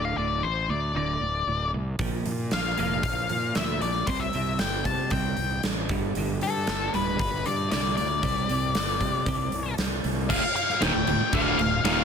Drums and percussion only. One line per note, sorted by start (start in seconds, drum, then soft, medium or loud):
1.99 kick loud
1.99 open hi-hat medium
2.26 open hi-hat soft
2.51 snare medium
2.51 open hi-hat medium
2.78 open hi-hat soft
3.03 kick medium
3.03 open hi-hat medium
3.29 open hi-hat soft
3.55 snare loud
3.55 open hi-hat medium
3.81 open hi-hat soft
4.07 kick medium
4.07 open hi-hat medium
4.33 open hi-hat soft
4.59 snare medium
4.59 open hi-hat medium
4.85 kick medium
4.85 open hi-hat soft
5.10 kick loud
5.10 open hi-hat medium
5.37 open hi-hat soft
5.63 snare medium
5.63 open hi-hat medium
5.89 kick medium
5.89 open hi-hat soft
6.15 open hi-hat medium
6.41 open hi-hat soft
6.67 snare loud
6.67 open hi-hat medium
6.94 open hi-hat soft
7.19 kick loud
7.19 open hi-hat medium
7.46 open hi-hat soft
7.71 snare medium
7.71 open hi-hat medium
7.97 open hi-hat soft
8.23 kick medium
8.23 open hi-hat medium
8.49 open hi-hat soft
8.75 snare medium
8.75 open hi-hat medium
9.01 kick medium
9.01 open hi-hat soft
9.26 kick loud
9.26 open hi-hat medium
9.52 open hi-hat soft
9.78 snare medium
9.78 open hi-hat medium
10.04 open hi-hat soft
10.30 kick loud
10.30 crash loud
10.30 crash medium
10.56 crash medium
10.69 snare soft
10.82 snare loud
10.82 crash medium
11.07 crash medium
11.33 kick loud
11.33 crash medium
11.59 crash medium
11.85 snare loud
11.85 crash medium